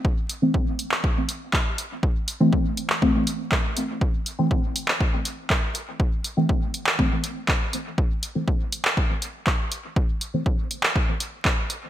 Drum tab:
HH |--x---x---x---x-|--x---x---x---x-|--x---x---x---x-|--x---x---x---x-|
CP |-------x----x---|-------x----x---|-------x----x---|-------x----x---|
BD |o---o---o---o---|o---o---o---o---|o---o---o---o---|o---o---o---o---|

HH |--x---x---x---x-|--x---x---x---x-|
CP |-------x----x---|-------x----x---|
BD |o---o---o---o---|o---o---o---o---|